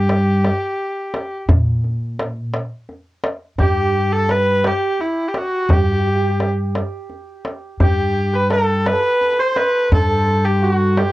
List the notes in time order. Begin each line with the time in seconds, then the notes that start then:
Already playing: G2 G4
0.09 tombak tek
0.44 tombak tek
1.14 tombak tek
1.49 A#2, tombak dum
1.84 tombak ka
2.19 tombak tek
2.54 tombak tek
2.89 tombak ka
3.24 tombak tek
3.59 G2 G4, tombak dum
4.12 A4
4.29 B4, tombak tek
4.64 G4, tombak tek
4.99 E4, tombak ka
5.28 G4
5.34 F#4, tombak tek
5.69 G2 G4, tombak dum
5.77 G4
5.84 G4
5.92 G4
6.00 G4
6.07 G4
6.15 G4
6.21 G4
6.29 G4
6.40 tombak tek
6.75 tombak tek
7.10 tombak ka
7.45 tombak tek
7.80 G2 G4, tombak dum
8.33 B4
8.50 A4, tombak tek
8.86 B4, tombak tek
8.93 A4
9.00 B4
9.21 tombak ka
9.32 B4
9.39 C5
9.56 B4, tombak tek
9.92 G2 A4, tombak dum
10.27 tombak ka
10.45 G4
10.62 F#4
10.97 G4, tombak tek